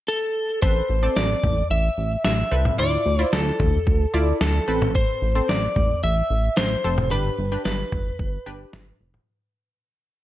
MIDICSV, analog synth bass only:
0, 0, Header, 1, 2, 480
1, 0, Start_track
1, 0, Key_signature, 0, "minor"
1, 0, Tempo, 540541
1, 556, Time_signature, 4, 2, 24, 8
1, 9091, End_track
2, 0, Start_track
2, 0, Title_t, "Analog synth bass"
2, 0, Program_c, 0, 38
2, 555, Note_on_c, 0, 33, 104
2, 723, Note_off_c, 0, 33, 0
2, 795, Note_on_c, 0, 33, 99
2, 963, Note_off_c, 0, 33, 0
2, 1034, Note_on_c, 0, 33, 99
2, 1203, Note_off_c, 0, 33, 0
2, 1275, Note_on_c, 0, 33, 96
2, 1443, Note_off_c, 0, 33, 0
2, 1514, Note_on_c, 0, 33, 105
2, 1683, Note_off_c, 0, 33, 0
2, 1755, Note_on_c, 0, 33, 93
2, 1923, Note_off_c, 0, 33, 0
2, 1996, Note_on_c, 0, 33, 108
2, 2164, Note_off_c, 0, 33, 0
2, 2236, Note_on_c, 0, 36, 88
2, 2404, Note_off_c, 0, 36, 0
2, 2474, Note_on_c, 0, 38, 104
2, 2642, Note_off_c, 0, 38, 0
2, 2715, Note_on_c, 0, 38, 107
2, 2883, Note_off_c, 0, 38, 0
2, 2955, Note_on_c, 0, 38, 98
2, 3124, Note_off_c, 0, 38, 0
2, 3194, Note_on_c, 0, 38, 103
2, 3363, Note_off_c, 0, 38, 0
2, 3435, Note_on_c, 0, 38, 106
2, 3603, Note_off_c, 0, 38, 0
2, 3675, Note_on_c, 0, 38, 103
2, 3843, Note_off_c, 0, 38, 0
2, 3915, Note_on_c, 0, 38, 106
2, 4084, Note_off_c, 0, 38, 0
2, 4157, Note_on_c, 0, 33, 94
2, 4492, Note_off_c, 0, 33, 0
2, 4637, Note_on_c, 0, 33, 104
2, 4804, Note_off_c, 0, 33, 0
2, 4877, Note_on_c, 0, 33, 110
2, 5044, Note_off_c, 0, 33, 0
2, 5117, Note_on_c, 0, 33, 96
2, 5284, Note_off_c, 0, 33, 0
2, 5358, Note_on_c, 0, 33, 103
2, 5525, Note_off_c, 0, 33, 0
2, 5598, Note_on_c, 0, 33, 99
2, 5765, Note_off_c, 0, 33, 0
2, 5838, Note_on_c, 0, 33, 93
2, 6005, Note_off_c, 0, 33, 0
2, 6078, Note_on_c, 0, 29, 87
2, 6318, Note_on_c, 0, 31, 108
2, 6332, Note_off_c, 0, 29, 0
2, 6486, Note_off_c, 0, 31, 0
2, 6558, Note_on_c, 0, 31, 97
2, 6725, Note_off_c, 0, 31, 0
2, 6797, Note_on_c, 0, 31, 94
2, 6964, Note_off_c, 0, 31, 0
2, 7036, Note_on_c, 0, 31, 96
2, 7204, Note_off_c, 0, 31, 0
2, 7275, Note_on_c, 0, 31, 99
2, 7443, Note_off_c, 0, 31, 0
2, 7517, Note_on_c, 0, 31, 99
2, 7684, Note_off_c, 0, 31, 0
2, 7757, Note_on_c, 0, 31, 101
2, 7925, Note_off_c, 0, 31, 0
2, 7996, Note_on_c, 0, 29, 91
2, 8164, Note_off_c, 0, 29, 0
2, 9091, End_track
0, 0, End_of_file